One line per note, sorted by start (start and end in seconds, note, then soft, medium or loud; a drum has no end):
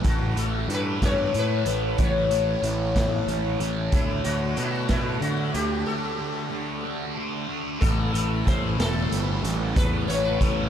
0.03 0.33 A1 medium
0.03 0.67 A2 medium
0.03 0.38 E3 medium
0.03 0.36 A3 medium
0.03 kick medium
0.03 closed hi-hat medium
0.07 0.39 F#4 medium
0.36 0.64 A1 medium
0.36 0.68 E3 soft
0.36 0.69 A3 medium
0.36 0.71 A4 medium
0.36 closed hi-hat medium
0.68 0.96 G2 medium
0.68 1.33 A2 medium
0.68 1.02 E3 medium
0.68 1.00 A3 medium
0.68 closed hi-hat medium
0.74 1.02 B4 medium
1.01 1.30 G2 medium
1.01 1.34 E3 medium
1.01 1.35 A3 medium
1.01 kick medium
1.01 snare medium
1.01 closed hi-hat medium
1.05 1.37 C#5 loud
1.34 1.97 A2 medium
1.34 1.62 A2 medium
1.34 1.67 E3 medium
1.34 1.66 A3 medium
1.34 closed hi-hat medium
1.39 2.03 B4 loud
1.66 1.94 A1 medium
1.66 1.99 E3 medium
1.66 2.00 A3 medium
1.66 closed hi-hat medium
1.98 2.55 A1 medium
1.98 2.62 A2 medium
1.98 2.31 E3 medium
1.98 2.30 A3 loud
1.98 kick loud
1.98 closed hi-hat medium
2.04 3.59 C#5 medium
2.30 2.63 E3 medium
2.30 2.65 A3 medium
2.30 closed hi-hat medium
2.63 3.19 A1 medium
2.63 3.27 A2 medium
2.63 2.96 E3 medium
2.63 2.94 A3 medium
2.63 closed hi-hat medium
2.94 3.27 E3 medium
2.94 3.30 A3 medium
2.94 kick medium
2.94 snare loud
2.94 closed hi-hat medium
3.27 3.55 A1 medium
3.27 3.91 A2 medium
3.27 3.61 E3 medium
3.27 3.60 A3 medium
3.27 closed hi-hat medium
3.60 3.88 A1 medium
3.60 3.92 E3 medium
3.60 3.94 A3 medium
3.60 closed hi-hat medium
3.92 4.21 D2 medium
3.92 4.57 D3 medium
3.92 4.27 A3 loud
3.92 4.25 D4 loud
3.92 4.24 E4 medium
3.92 kick loud
3.92 closed hi-hat medium
4.24 4.53 D2 medium
4.24 4.57 A3 soft
4.24 4.58 D4 medium
4.24 4.55 F#4 medium
4.24 closed hi-hat medium
4.56 4.86 B2 medium
4.56 5.20 D3 medium
4.56 4.91 A3 medium
4.56 4.88 D4 medium
4.56 4.64 F#4 medium
4.56 closed hi-hat medium
4.64 4.71 E4 medium
4.71 4.90 F#4 medium
4.89 5.18 B2 medium
4.89 5.22 A3 medium
4.89 5.23 D4 medium
4.89 5.22 E4 medium
4.89 kick medium
4.89 snare loud
4.89 closed hi-hat medium
5.21 5.50 D3 medium
5.21 5.85 D3 medium
5.21 5.55 A3 medium
5.21 5.53 D4 medium
5.21 5.54 F#4 medium
5.21 closed hi-hat medium
5.54 5.83 D2 medium
5.54 5.86 A3 medium
5.54 5.86 D4 medium
5.54 5.86 G4 medium
5.54 closed hi-hat medium
5.86 6.49 D3 medium
5.86 6.19 A3 medium
5.86 6.18 D4 medium
5.86 7.12 A4 medium
6.19 6.50 A3 soft
6.19 6.52 D4 medium
6.50 7.14 D3 medium
6.50 6.85 A3 medium
6.50 6.83 D4 medium
6.85 7.15 A3 soft
6.85 7.17 D4 medium
7.16 7.79 D3 medium
7.16 7.48 A3 medium
7.16 7.46 D4 medium
7.48 7.79 A3 medium
7.48 7.79 D4 medium
7.80 8.10 A1 medium
7.80 9.75 A2 medium
7.80 8.12 A4 medium
7.80 kick loud
7.80 closed hi-hat medium
8.13 8.41 A1 medium
8.13 8.78 E4 medium
8.13 8.45 A4 medium
8.13 closed hi-hat medium
8.46 8.74 A1 medium
8.46 9.43 C#4 medium
8.46 8.78 C5 medium
8.46 kick medium
8.46 closed hi-hat medium
8.78 9.06 E1 medium
8.78 10.08 E4 medium
8.78 9.10 A4 medium
8.78 snare loud
8.78 closed hi-hat medium
9.11 9.38 G1 medium
9.11 10.69 G3 medium
9.11 closed hi-hat medium
9.43 9.71 A1 medium
9.43 10.39 C#4 medium
9.43 closed hi-hat medium
9.75 10.04 E2 medium
9.75 10.69 A2 medium
9.75 10.07 B4 loud
9.75 kick loud
9.75 closed hi-hat medium
10.08 10.36 A1 medium
10.08 10.69 E4 medium
10.08 10.23 C#5 medium
10.08 closed hi-hat medium
10.25 10.39 B4 medium
10.40 10.69 A1 medium
10.40 10.69 C#4 medium
10.40 10.69 A4 medium
10.40 kick medium
10.40 closed hi-hat medium